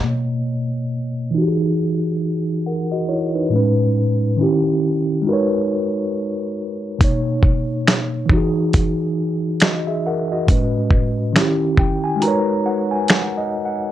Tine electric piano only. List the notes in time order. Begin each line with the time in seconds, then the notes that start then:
0.02 B2 A#3 C#5
0.07 D#5
1.31 E3 D#4
1.38 F#4 G4
1.48 G#4
2.66 A#4 F#5
2.92 F#4 D#5
3.09 E4 C#5
3.35 D#4 B4
3.50 A2 G#3 C#4
3.56 B4
4.37 D#3 C#4 E4
4.43 G4
5.22 G#3 D#4
5.27 F#4 A#4
5.31 B4 C#5
6.99 B2 A#3 D#4
7.04 C#5
8.26 E3 D#4
8.33 F#4 G#4
9.62 F#4 D#5
9.87 G#4 E5
10.06 A#4 F#5
10.32 F#4 D#5
10.47 A2 C#4
10.52 B4
11.33 D#3 C#4 E4
11.38 G4
11.79 G5
12.04 G#5
12.16 G#3 D#4
12.21 F#4 A#4 A#5
12.26 B4 C#5
12.66 F#5
12.91 G#5
13.09 F#5
13.38 D#5
13.65 F#5